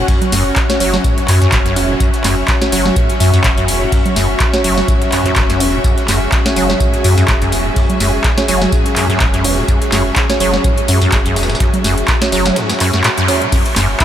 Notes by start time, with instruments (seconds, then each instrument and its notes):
Already playing: string machine C#4 F#4 C#5, string section C#4 F#4 F#5
0.08 acid bass F#2, kick, closed hi-hat, open hi-hat
0.22 closed hi-hat, low conga
0.32 sub bass F#1, acid bass F#2, snare, open hi-hat, tambourine
0.56 string section E5, kick, snare, clap, closed hi-hat, tambourine
0.69 synth stab C#4 F#4 C#5, snare, closed hi-hat
0.80 sub bass F#1, acid bass F#3, synth stab C#4 F#4 C#5, open hi-hat, tambourine
0.94 snare, closed hi-hat, low conga
1.04 acid bass G#2, kick, closed hi-hat, tambourine
1.18 acid bass F#2, snare, closed hi-hat
1.28 acid bass F#2, sub bass F#2, clap, open hi-hat, tambourine
1.42 acid bass F#2, snare, closed hi-hat
1.52 sub bass F#1, acid bass A2, kick, snare, clap, closed hi-hat, tambourine
1.66 acid bass F#2, snare, closed hi-hat
1.76 sub bass E1, acid bass E2, synth stab C#4 F#4 C#5, open hi-hat, tambourine
1.90 acid bass B2
2.00 acid bass F#2, kick, closed hi-hat, tambourine
2.14 snare, closed hi-hat
2.24 sub bass F#1, acid bass F#2, snare, clap, open hi-hat, tambourine
2.48 kick, snare, clap, closed hi-hat, tambourine
2.62 synth stab C#4 F#4 C#5, snare, closed hi-hat
2.72 sub bass F#1, acid bass F#3, synth stab C#4 F#4 C#5, open hi-hat, tambourine
2.86 snare, low conga
2.96 acid bass G#2, kick, closed hi-hat, tambourine
3.10 acid bass F#2, snare, closed hi-hat
3.20 sub bass F#2, acid bass F#2, synth stab C#4 F#4 E5, open hi-hat, tambourine
3.34 acid bass F#2, closed hi-hat
3.44 sub bass F#1, acid bass A2, kick, snare, clap, closed hi-hat, tambourine
3.58 acid bass F#2, closed hi-hat
3.68 sub bass E1, acid bass E2, open hi-hat, tambourine
3.82 acid bass B2
3.92 acid bass F#2, kick, closed hi-hat, open hi-hat
4.06 closed hi-hat, low conga
4.16 sub bass F#1, acid bass F#2, snare, open hi-hat, tambourine
4.40 kick, snare, clap, closed hi-hat, tambourine
4.53 synth stab C#4 F#4 C#5, snare, closed hi-hat
4.64 sub bass F#1, acid bass F#3, synth stab C#4 F#4 C#5, open hi-hat, tambourine
4.78 snare, closed hi-hat, low conga
4.88 acid bass G#2, kick, closed hi-hat, tambourine
5.02 acid bass F#2, snare, closed hi-hat
5.12 acid bass F#2, sub bass F#2, clap, open hi-hat, tambourine
5.26 acid bass F#2, synth stab C#4 F#4 C#5, snare, closed hi-hat
5.36 sub bass F#1, acid bass A2, kick, snare, clap, closed hi-hat, tambourine
5.50 acid bass F#2, snare, closed hi-hat
5.60 sub bass E1, acid bass E2, synth stab C#4 F#4 C#5, open hi-hat, tambourine
5.74 acid bass B2
5.84 acid bass F#2, string machine G#4, kick, closed hi-hat, tambourine
5.98 snare, closed hi-hat
6.08 sub bass F#1, acid bass F#2, snare, clap, open hi-hat, tambourine
6.32 kick, snare, clap, closed hi-hat, tambourine
6.46 synth stab C#4 F#4 C#5, snare, closed hi-hat
6.56 sub bass F#1, acid bass F#3, synth stab C#4 F#4 C#5, open hi-hat, tambourine
6.70 snare, low conga
6.80 acid bass G#2, kick, closed hi-hat, tambourine
6.94 acid bass F#2, snare, closed hi-hat
7.04 acid bass F#2, sub bass F#2, synth stab C#4 F#4 E5, open hi-hat, tambourine
7.18 acid bass F#2, closed hi-hat
7.28 sub bass F#1, acid bass A2, kick, snare, clap, closed hi-hat, tambourine
7.42 acid bass F#2, closed hi-hat
7.52 sub bass E1, acid bass E2, open hi-hat, tambourine
7.66 acid bass B2
7.76 acid bass F#2, kick, closed hi-hat, open hi-hat
7.90 closed hi-hat, low conga
8.00 sub bass F#1, acid bass F#2, snare, open hi-hat, tambourine
8.24 kick, snare, clap, closed hi-hat, tambourine
8.38 synth stab C#4 F#4 C#5, snare, closed hi-hat
8.48 sub bass F#1, acid bass F#3, synth stab C#4 F#4 C#5, open hi-hat, tambourine
8.62 snare, closed hi-hat, low conga
8.72 acid bass G#2, kick, closed hi-hat, tambourine
8.86 acid bass F#2, snare, closed hi-hat
8.96 sub bass F#2, acid bass F#2, clap, open hi-hat, tambourine
9.10 acid bass F#2, snare, closed hi-hat
9.20 sub bass F#1, acid bass A2, kick, snare, clap, closed hi-hat, tambourine
9.34 acid bass F#2, snare, closed hi-hat
9.44 sub bass E1, acid bass E2, synth stab C#4 F#4 C#5, open hi-hat, tambourine
9.58 acid bass B2
9.68 acid bass F#2, kick, closed hi-hat, tambourine
9.82 snare, closed hi-hat
9.92 sub bass F#1, acid bass F#2, snare, clap, open hi-hat, tambourine
10.16 kick, snare, clap, closed hi-hat, tambourine
10.30 synth stab C#4 F#4 C#5, snare, closed hi-hat
10.40 sub bass F#1, acid bass F#3, synth stab C#4 F#4 C#5, open hi-hat, tambourine
10.54 snare, low conga
10.64 acid bass G#2, kick, closed hi-hat, tambourine
10.78 acid bass F#2, closed hi-hat
10.88 sub bass F#2, acid bass F#2, synth stab C#4 F#4 E5, open hi-hat, tambourine
11.02 acid bass F#2, closed hi-hat
11.12 sub bass F#1, acid bass A2, kick, snare, clap, closed hi-hat, tambourine
11.26 acid bass F#2, closed hi-hat
11.36 sub bass E1, acid bass E2, snare, open hi-hat, tambourine
11.43 snare, tambourine
11.50 acid bass B2, snare, tambourine
11.55 snare, tambourine
11.60 acid bass F#2, kick, snare, closed hi-hat
11.74 closed hi-hat, low conga
11.84 sub bass F#1, acid bass F#2, snare, open hi-hat, tambourine
11.98 closed hi-hat
12.08 kick, snare, clap, closed hi-hat, tambourine
12.22 synth stab C#4 F#4 C#5, snare, closed hi-hat
12.32 sub bass F#1, acid bass F#3, synth stab C#4 F#4 C#5, snare, open hi-hat, tambourine
12.46 snare, closed hi-hat, tambourine, low conga
12.56 acid bass G#2, snare, closed hi-hat, tambourine
12.70 acid bass F#2, snare, closed hi-hat, tambourine
12.80 acid bass F#2, clap, open hi-hat, tambourine
12.94 acid bass F#2, snare, closed hi-hat
13.04 acid bass A2, snare, clap, closed hi-hat, tambourine
13.18 acid bass F#2, snare, closed hi-hat
13.28 acid bass E2, synth stab C#4 F#4 C#5, open hi-hat, tambourine
13.42 acid bass B2, closed hi-hat
13.52 acid bass F#2, string section C#4, kick, closed hi-hat, crash, tambourine, high conga
13.66 snare, closed hi-hat
13.76 sub bass F#1, acid bass F#2, string section F#4, snare, clap, open hi-hat, tambourine, high conga
14.00 muted trumpet E4, kick, snare, clap, closed hi-hat, tambourine, high conga